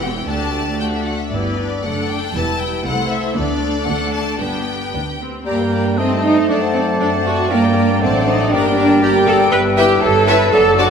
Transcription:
Already playing: E1 E2 E3 G4
0.01 C4 F#4 G5
0.27 D2 A3 D4 G4 D5 A5
0.79 A3 D4 F#4 D5 G5
0.95 E5
1.06 F#5
1.21 E5
1.32 G1 G2 B3 E4 G4 B4 D5
1.58 D4
1.83 F#1 F#2 A3 D4 A4 D5 F#5
2.10 G5
2.35 E1 E2 G3 E4 B4 A5
2.61 G5
2.85 C2 A3 E4 A4 C5 F#5
3.12 E5
3.35 D2 B3 D4 A4 D5
3.60 A3
3.86 D2 D4 A4 D5 F#5
4.14 A5
4.39 G1 G2 B3 D4 G4 B4 G5
4.93 D2 D4
5.21 C4
5.45 G2 G3 A#3 G4 D5 G5 A#5
5.58 A#4 G5
5.71 G4 D5 A#5
5.84 A#4 G5
5.97 A3 C4 D#4 C5 D#5 G5 A5
6.10 C5 D#5 A5
6.22 D#4 C5 D#5 G5
6.36 C5 D#5 A5
6.48 F#2 C4 D4 A4 D5 F#5
6.60 C5 F#5 A5
6.74 C4 A4 D5 F#5
6.87 C5 F#5 A5
6.99 D4 A4 D5 F#5
7.12 C5 F#5 A5
7.24 F#4 A4 D5 F#5
7.36 C5 F#5 A5
7.49 G2 G3 A#3 D4 G4 A#4 D5 G5 A#5
7.62 A#4 G5
7.75 G4 D5 A#5
7.87 A#4 G5
8.01 A1 F#3 A3 C4 C5 D5 F#5 A5
8.12 C5 D5
8.16 F#5
8.25 D#4 C5 D5
8.29 A5
8.37 C5 D5 F#5
8.51 G1 G3 A#3 D4 G4 A#4 D5 G5 A#5
8.62 A#4 G5
8.75 D4 G4 D5 A#5
8.88 A#4 G5
9.00 G4 D5 A#5
9.13 A#4
9.17 G5
9.25 G4 A4 D5
9.30 A#5
9.38 A#4
9.42 G5
9.51 G1 B4 E5
9.76 B3 E4 G4 B4 E5 G5
10.01 G1 E3 A4 C#5 A5
10.27 C#4 E4 B4 C#5 E5 A5
10.51 F#1 F#3 A4 D5
10.75 D4 F#4 D5 A5

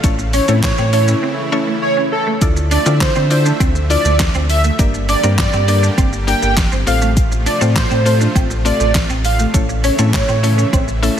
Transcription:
Already playing: A3
0.03 A1 C#3 E3 A3 C#4 E4 A4 C#5, kick, closed hi-hat, shaker
0.19 muted clean electric guitar stroke, shaker
0.33 C#4 C#5, open hi-hat, shaker
0.48 A2 A3 C4 C#4 E4 A4 C#5, shaker
0.63 C#5, kick, snare, clap, closed hi-hat, shaker
0.78 A2 C4, shaker
0.93 A3 C#4 E4 A4 C#5, muted clean electric guitar stroke, open hi-hat, shaker
1.08 C#4, shaker
1.23 C4
1.38 muted clean electric guitar stroke
1.52 A3 C#4 E4 A4 C#5
1.67 A3
1.82 C#5
1.97 C#4
2.12 A4, muted clean electric guitar stroke
2.27 A3
2.41 D2 D3 F3 A3 D4 E4 F4 A4 D5 E5, kick, closed hi-hat, shaker
2.56 muted clean electric guitar stroke, shaker
2.71 D4 D5, open hi-hat, shaker
2.86 D3 C4 D4 E4 F4 A4 D5, shaker
3.01 C5, kick, snare, clap, closed hi-hat, shaker
3.16 D3 C4, shaker
3.30 D4 E4 F4 A4 C5 D5, muted clean electric guitar stroke, open hi-hat, shaker
3.46 D4, shaker
3.60 D2 C4, kick, closed hi-hat, shaker
3.75 muted clean electric guitar stroke, shaker
3.90 D4 E4 F4 A4 D5, open hi-hat, shaker
4.05 D2 A3, shaker
4.20 kick, snare, clap, closed hi-hat, shaker
4.34 D2 C4, shaker
4.50 E5, muted clean electric guitar stroke, open hi-hat, shaker
4.64 A3, shaker
4.79 G1 D3 G3 A#3 D4 G4 A#4 D5, kick, closed hi-hat, shaker
4.94 muted clean electric guitar stroke, shaker
5.09 D4 D5, open hi-hat, shaker
5.23 G2 A#3 C4 D4 G4 A#4 D5, shaker
5.38 D5, kick, snare, clap, closed hi-hat, shaker
5.53 G2 C4, shaker
5.68 A#3 D4 G4 A#4 D5, muted clean electric guitar stroke, open hi-hat, shaker
5.83 D4, shaker
5.98 G1 C4, kick, closed hi-hat, shaker
6.13 muted clean electric guitar stroke, shaker
6.27 A#3 D4 G4 A#4 D5 G5, open hi-hat, shaker
6.42 G1 A#3, shaker
6.57 kick, snare, clap, closed hi-hat, shaker
6.72 G1 C4, shaker
6.87 A1 C3 F3 A3 C4 F4 A4 C5 F5, muted clean electric guitar stroke, open hi-hat, shaker
7.02 A3, shaker
7.17 kick, closed hi-hat, shaker
7.32 muted clean electric guitar stroke, shaker
7.46 D4 D5, open hi-hat, shaker
7.61 A2 A3 C4 F4 A4 C5, shaker
7.76 C5, kick, snare, clap, closed hi-hat, shaker
7.91 A2 C4, shaker
8.05 A3 C4 F4 A4 C5, muted clean electric guitar stroke, open hi-hat, shaker
8.21 D4, shaker
8.36 A1 C4, kick, closed hi-hat, shaker
8.50 muted clean electric guitar stroke, shaker
8.65 A3 C4 F4 A4 D5, open hi-hat, shaker
8.80 A1 A3, shaker
8.95 kick, snare, clap, closed hi-hat, shaker
9.10 A1 C4, shaker
9.25 F5, muted clean electric guitar stroke, open hi-hat, shaker
9.39 A3, shaker
9.54 A1 C#3 E3 A3 C#4 E4 A4 C#5 E5, kick, closed hi-hat, shaker
9.69 muted clean electric guitar stroke, shaker
9.84 C#4 C#5, open hi-hat, shaker
9.99 A2 A3 C4 C#4 E4 A4 C#5, shaker
10.14 C#5, kick, snare, clap, closed hi-hat, shaker
10.29 A2 C4, shaker
10.43 A3 C#4 E4 A4 C#5, muted clean electric guitar stroke, open hi-hat, shaker
10.58 C#4, shaker
10.73 A1 C4, kick, closed hi-hat, shaker
10.88 muted clean electric guitar stroke, shaker
11.02 A3 C#4 E4 A4 E5, open hi-hat, shaker

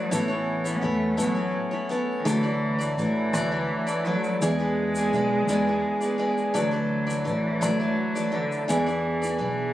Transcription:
Already playing: E3 F#3 E4 A4 D5
0.11 A1 E3 A3 B3 C#4 E4 A4 C#5, shaker
0.28 E4 A4 C#5
0.64 E4 A4 C#5, shaker
0.77 B3
0.81 E2 A3 B3 E4 A4 C#5
1.17 A1 F#3 A3 B3 E4 A4 C#5, shaker
1.34 E4 A4 C#5
1.71 E4 A4 C#5
1.89 B3 E4 A4 C#5, shaker
2.19 D#3
2.25 D2 D3 E3 F#3 A3 D4 E4 A4 D5, shaker
2.43 E3 A3 A4 D5
2.79 E3 A3 A4 D5, shaker
2.98 A1 E3 A3 A4 D5, shaker
3.33 D2 D3 E3 F#3 A3 A4 D5, shaker
3.51 E3 A3 A4 D5
3.87 E3 A3 A4 D5, shaker
4.04 E3 F#3 A3 A4 D5
4.24 shaker
4.34 A3
4.40 E2 E3 G#3 B3 E4 G#4 D5, shaker
4.59 B3 E4 G#4 D5
4.95 B3 E4 G#4 D5, shaker
5.12 B1 B3 E4 G#4 D5, shaker
5.48 E2 E3 G#3 B3 E4 G#4 D5, shaker
5.67 B3 E4 G#4 D5
6.01 B3 E4 G#4 D5, shaker
6.18 B3 E4 G#4 D5
6.38 shaker
6.53 D2 D3 E3 F#3 A3 E4 A4 D5, shaker
6.71 E3 A3 A4 D5
7.07 E3 A3 A4 D5, shaker
7.24 A1 E3 A3 A4 D5, shaker
7.61 D2 D3 E3 F#3 A3 A4 D5, shaker
7.79 E3 A3 A4 D5
8.15 E3 A3 A4 D5, shaker
8.32 D3 E3 A3 A4 D5
8.52 shaker
8.68 E2 E3 G#3 B3 E4 G#4 D5, shaker
8.86 B3 E4 G#4 D5, shaker
9.22 B3 E4 G#4 D5, shaker
9.38 B1 E3 B3 E4 G#4 D5

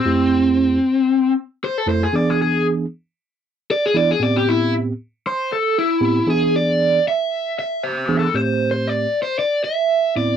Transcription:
Already playing: C4
0.05 F2 A3 E4 G4
1.64 C5
1.78 A4
1.87 F2 A3 E4 A4 C5
2.03 G#4
2.13 E3 B3 D4 G#4 D5
2.30 G#4
2.42 G#4
3.71 D5
3.86 G#4
3.94 E3 B3 D4 E4 D5
4.11 G#4
4.20 A2 B3 C4 G4 D5
4.37 G4
4.49 E4
5.27 C5
5.52 A4
5.78 E4
6.01 A2 B3 C4 G4
6.27 E3 B3 D4 G#4
6.56 D5
7.08 E5
7.59 E5
7.83 C5
8.08 E3 B3 D4 G#4
8.19 A4
8.34 A2 A3 C4 G4 C5
8.71 C5
8.87 D5
9.23 C5
9.39 D5
9.64 E5
10.16 A2 B3 C4 E4 D5

